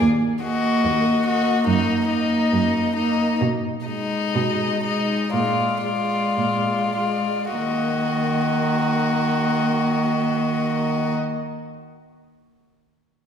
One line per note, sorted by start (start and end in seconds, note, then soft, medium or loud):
0.02 0.73 D#2 medium
0.44 1.25 A#3 soft
0.44 1.25 F#4 soft
0.44 1.25 D#5 soft
0.85 1.54 D#2 soft
1.26 1.66 A#3 soft
1.26 1.66 F#4 soft
1.26 1.66 D#5 soft
1.67 2.39 F#2 medium
1.67 2.08 A#3 soft
1.67 2.07 D#4 soft
1.67 2.08 D#5 soft
2.07 2.95 A#3 soft
2.07 2.94 D#4 soft
2.07 2.95 D#5 soft
2.53 3.29 F#2 soft
2.96 3.41 A#3 soft
2.96 3.40 D#4 soft
2.96 3.40 D#5 soft
3.41 4.21 B2 soft
3.87 4.82 G#3 soft
3.87 4.81 D#4 soft
3.87 4.82 D#5 soft
4.35 5.19 B2 soft
4.84 5.33 G#3 soft
4.84 5.32 D#4 soft
4.84 5.32 D#5 soft
5.32 6.22 A#2 soft
5.32 5.82 G#3 soft
5.32 5.82 F4 soft
5.32 5.82 D5 soft
5.83 6.95 G#3 soft
5.83 6.95 F4 soft
5.83 6.95 D5 soft
6.37 7.41 A#2 soft
6.97 7.55 G#3 soft
6.97 7.54 F4 soft
6.97 7.54 D5 soft
7.55 11.13 D#3 soft
7.55 11.15 A#3 soft
7.55 11.13 F#4 soft
7.55 11.13 D#5 soft